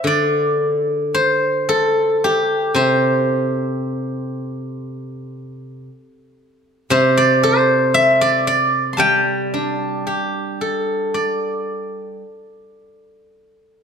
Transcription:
guzheng
Already playing: C5 E5
0.04 D3 D5
1.14 C5
1.69 A4
2.24 G4
2.75 C3 C5
6.90 C3 C5
7.17 D5
7.43 C5
7.94 E5
8.21 D5
8.47 D5
8.93 A5 C6
8.98 G3 G5
9.54 D4
10.07 G4
10.61 A4
11.14 D5

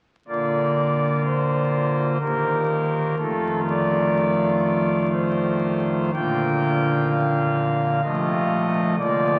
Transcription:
pipe organ
0.28 A#1 A#2 D3 A#3 F4 D5
1.25 C5
2.20 D#1 D#2 D#3 A#3 G4 A#4
3.18 F1 F2 D#3 A3 F4 A4
3.69 D5
5.13 C5
6.13 A#1 A#2 D3 A#3 F4 G5
7.10 F5
8.03 C2 C3 F3 A3 F4 D#5
8.98 D1 D2 F3 A#3 F4 D5

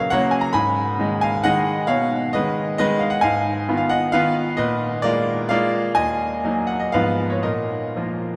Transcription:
grand piano
0.00 F5
0.10 C#3 F#3 A#3 C#5 F#5
0.31 G#5
0.41 A#5
0.53 G#2 G#5 B5
0.99 D#3 G#3 D#4
1.21 F5 G#5
1.44 D#3 G#3 D#4 D#5 F#5
1.87 B2 C#5 F5
2.33 D#3 G#3 D#4 B4 D#5
2.78 D#3 G#3 D#4 B4 D#5
2.99 F5
3.10 F#5
3.21 G#2 F5 G#5
3.69 D#3 B3 F4
3.77 F5
3.89 D#5 F#5
4.12 D#3 B3 F4 B4 F5
4.57 A#2 B4 D#5
5.02 G#3 A#3 F4 A#4 D5
5.49 G#3 A#3 F4 D5 F5
5.95 D#2 D#5 G#5
6.44 F#3 A#3 D#4
6.67 F#5
6.80 D#5
6.92 G#2 F3 B3 F4 B4 F5
7.30 C#5
7.43 A#2 A#4 D#5
7.96 F3 A#3 F4

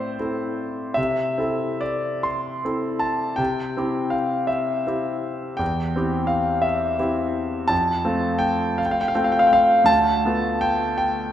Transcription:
grand piano
Already playing: A2 C4 E4 A4 C5 D5 E5
0.19 C4 E4 A4
0.94 C3 E5
1.38 C4 E4 A4
1.81 D5
2.23 C6
2.65 C4 E4 A4
2.99 A5
3.36 C3 G5
3.77 C4 E4 G4
4.10 F5
4.47 E5
4.87 C4 E4 G4
5.57 E2 G5
5.96 C4 E4 G4
6.27 F5
6.62 E5
6.99 C4 E4 G4
7.68 F2 A5
8.05 A3 C4 F4
8.39 G5
8.78 F5
8.86 G5
8.91 F5
9.01 G5
9.08 F5
9.15 A3 C4 F4 G5
9.24 F5
9.32 G5
9.39 F5
9.47 G5
9.53 F5
9.84 D2 A5
10.25 A3 B3 F4
10.61 G5
10.98 G5

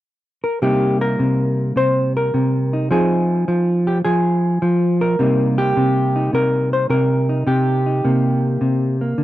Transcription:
hollow-body jazz guitar
0.44 A#4
0.62 C3 G3 A#3 D#4 G4
1.01 A#4
1.19 C3
1.76 C3 C5
2.17 A#4
2.34 C3
2.73 D#4
2.91 F3 C4 D#4 G#4
3.48 F3
3.87 G4
4.05 F3 G#4
4.62 F3
5.01 A#4
5.19 C3 G3 A#3 D#4
5.58 G4
5.77 C3
6.16 D#4
6.33 C3 A#4
6.73 C5
6.90 C3 A#4
7.29 D#4
7.47 C3 G4
7.86 D#4
8.04 C3 A#3
8.61 C3
9.01 A#3
9.18 D3

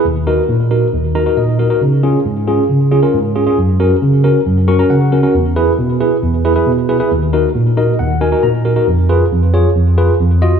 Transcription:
tine electric piano
0.05 D#2
0.27 D#4 F#4 A#4
0.49 A#2
0.71 D#4 F#4 A#4
0.93 D#2
1.15 D#4 F#4 A#4 A#5
1.26 D#4 F#4 A#4
1.37 A#2 D#5
1.59 D#4 F#4 A#4
1.70 D#4 F#4 A#4
1.81 C#3
2.03 C#4 F4 G#4
2.25 G#2
2.47 C#4 F4 G#4
2.70 C#3
2.91 C#4 F4 G#4
3.03 C#4 F4 A#4
3.14 G#2
3.36 C#4 F4 G#4
3.47 C#4 F4 G#4
3.58 F#2
3.80 C#4 F#4 A#4
4.02 C#3
4.24 C#4 F#4 A#4
4.46 F#2
4.68 C#4 F#4 A#4 C#6
4.79 C#4 F#4 A#4 A#5
4.90 C#3 F#5
5.12 C#4 F#4 A#4
5.23 C#4 F#4 A#4
5.34 E2
5.56 E4 G#4 B4
5.79 B2
6.01 E4 G#4 B4
6.23 E2
6.45 E4 G#4 B4
6.56 E4 G#4 B4
6.67 B2
6.89 E4 G#4 B4
7.00 E4 G#4 B4
7.11 D#2
7.33 D#4 F#4 A#4
7.55 A#2
7.77 D#4 F#4 A#4 D#5
7.99 D#2 F#5
8.21 D#4 F#4 A#4 G#5
8.32 D#4 F#4 A#4
8.43 A#2 A#5
8.65 D#4 F#4 A#4
8.76 D#4 F#4 A#4
8.87 F2
9.09 F4 G#4 B4
9.31 F2
9.54 F4 G#4 C#5
9.76 F2
9.98 F4 G#4 B4
10.20 F2
10.42 F4 F#4 D#5

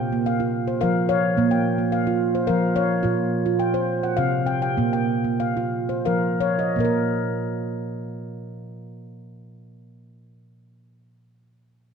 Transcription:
handpan
Already playing: G5
0.13 A#3
0.26 F5
0.40 F4
0.68 C5
0.81 F3 A#4 F5
1.09 C#5 F5
1.37 A#2 A#3
1.51 G5
1.78 A#3
1.92 F5
2.07 F4
2.35 C5
2.47 F3 A#4 F5
2.76 C#5 F5
3.03 A#2 F4
3.46 F4
3.59 G5
3.74 C5
4.03 F#5
4.17 C3 F5
4.46 G5
4.62 G5
4.77 A#2 A#3
4.93 G5
5.24 A#3
5.40 F5
5.57 F4
5.89 C5
6.05 F3 A#4 F5
6.41 C#5 F5
6.59 D#5
6.76 A#2 A#3
6.80 A#4
6.85 A#4

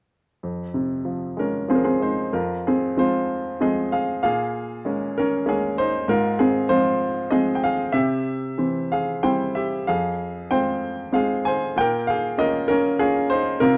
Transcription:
upright piano
0.43 F2
0.74 C3
1.05 F3
1.37 G#3 C#4 A#4
1.68 F3 C4 G#4
1.75 A#4
1.84 C4 G#4
2.00 G#3 D#4 C5
2.33 F2 F4 A#4
2.67 C4 G#4
2.97 F3 G#3 C4 F4 C5
3.60 F3 G#3 C4 G#4 D#5
3.92 G#4 F5
4.23 A#2 G#4 F5
4.85 G#3 A#3 C#4
5.18 C#4 A#4
5.46 G#3 A#3 C#4 G#4
5.50 C#4
5.78 D#4 C5
6.08 G#2 F4 A#4
6.39 C4 G#4
6.69 F3 G#3 C4 F4 C5
7.31 F3 G#3 C4 G#4 D#5
7.55 G5
7.64 G#4 F5
7.92 C3 G4 E5
8.58 E3 C4
8.92 G#4 F5
9.23 G3 C4 E4 C5 G5
9.55 G4 E5
9.87 F2 G#4 F5
10.51 G#3 C4 F4 C5 G5
11.12 G#3 C4 F4 G#4 F5
11.45 C5 G#5
11.76 A#2 G5
11.81 A#4
12.07 G#4 F5
12.38 A#3 C#4 F4 A#4 D#5
12.68 C#4 A#4
12.99 A#3 C#4 F4 G#4
13.30 D#4 C5
13.60 C3 F4 A#4

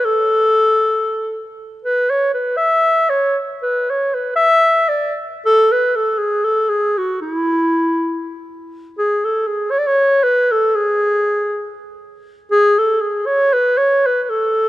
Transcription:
clarinet
0.05 A4
1.84 B4
2.10 C#5
2.34 B4
2.57 E5
3.09 C#5
3.62 B4
3.90 C#5
4.14 B4
4.36 E5
4.88 D5
5.45 A4
5.72 B4
5.96 A4
6.18 G#4
6.45 A4
6.69 G#4
6.98 F#4
7.21 E4
8.98 G#4
9.25 A4
9.47 G#4
9.71 C#5
9.79 D5
9.86 C#5
10.23 B4
10.52 A4
10.75 G#4
12.51 G#4
12.79 A4
13.01 G#4
13.26 C#5
13.53 B4
13.77 C#5
14.06 B4
14.23 B4
14.30 A4

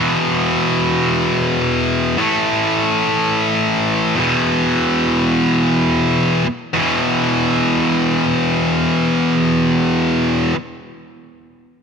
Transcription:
distorted electric guitar
Already playing: E2 B2 E3
2.18 A2 E3 A3
4.15 E2 B2
4.20 E3
6.74 E2 B2
6.78 E3

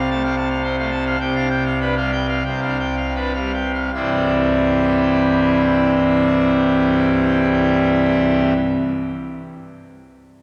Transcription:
pipe organ
Already playing: C2 C3
0.10 A3 A5
0.23 C4 F5
0.36 A5
0.50 F5
0.63 C4 C5
0.78 A3 F5
0.91 A5
1.06 F5
1.20 C2 C3 G5
1.35 D4 F5
1.50 G5
1.65 F5
1.81 D4 B4
1.97 G3 F5
2.12 G5
2.29 F5
2.44 C2 C3 G5
2.62 D4 F5
2.79 G5
2.97 F5
3.15 D4 B4
3.34 G3 F5
3.54 G5
3.74 F5
3.94 C1 C2 G2 E3 G3 C4 E4

